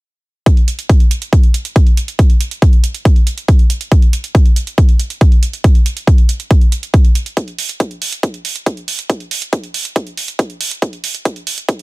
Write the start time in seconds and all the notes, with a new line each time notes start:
0.46 kick, closed hi-hat
0.57 closed hi-hat
0.68 closed hi-hat
0.79 closed hi-hat
0.89 kick, closed hi-hat
1.00 closed hi-hat
1.11 closed hi-hat
1.22 closed hi-hat
1.33 kick, closed hi-hat
1.43 closed hi-hat
1.54 closed hi-hat
1.65 closed hi-hat
1.76 kick, closed hi-hat
1.87 closed hi-hat
1.97 closed hi-hat
2.08 closed hi-hat
2.19 kick, closed hi-hat
2.30 closed hi-hat
2.41 closed hi-hat
2.51 closed hi-hat
2.62 kick, closed hi-hat
2.73 closed hi-hat
2.84 closed hi-hat
2.94 closed hi-hat
3.05 kick, closed hi-hat
3.16 closed hi-hat
3.27 closed hi-hat
3.38 closed hi-hat
3.48 kick, closed hi-hat
3.59 closed hi-hat
3.70 closed hi-hat
3.81 closed hi-hat
3.92 kick, closed hi-hat
4.02 closed hi-hat
4.13 closed hi-hat
4.24 closed hi-hat
4.35 kick, closed hi-hat
4.46 closed hi-hat
4.56 closed hi-hat
4.67 closed hi-hat
4.78 kick, closed hi-hat
4.89 closed hi-hat
4.99 closed hi-hat
5.10 closed hi-hat
5.21 kick, closed hi-hat
5.32 closed hi-hat
5.43 closed hi-hat
5.53 closed hi-hat
5.64 kick, closed hi-hat
5.75 closed hi-hat
5.86 closed hi-hat
5.97 closed hi-hat
6.07 kick, closed hi-hat
6.18 closed hi-hat
6.29 closed hi-hat
6.40 closed hi-hat
6.51 kick, closed hi-hat
6.61 closed hi-hat
6.72 closed hi-hat
6.83 closed hi-hat
6.94 kick, closed hi-hat
7.05 closed hi-hat
7.15 closed hi-hat
7.26 closed hi-hat
7.37 kick, closed hi-hat
7.48 closed hi-hat
7.59 open hi-hat
7.69 closed hi-hat
7.80 kick, closed hi-hat
7.91 closed hi-hat
8.02 open hi-hat
8.12 closed hi-hat
8.23 kick, closed hi-hat
8.34 closed hi-hat
8.45 open hi-hat
8.56 closed hi-hat
8.66 kick, closed hi-hat
8.77 closed hi-hat
8.88 open hi-hat
8.99 closed hi-hat
9.10 kick, closed hi-hat
9.20 closed hi-hat
9.31 open hi-hat
9.42 closed hi-hat
9.53 kick, closed hi-hat
9.64 closed hi-hat
9.74 open hi-hat
9.85 closed hi-hat
9.96 kick, closed hi-hat
10.07 closed hi-hat
10.17 open hi-hat
10.28 closed hi-hat
10.39 kick, closed hi-hat
10.50 closed hi-hat
10.61 open hi-hat
10.71 closed hi-hat
10.82 kick, closed hi-hat
10.93 closed hi-hat
11.04 open hi-hat
11.15 closed hi-hat
11.25 kick, closed hi-hat
11.36 closed hi-hat
11.47 open hi-hat
11.58 closed hi-hat
11.69 kick, closed hi-hat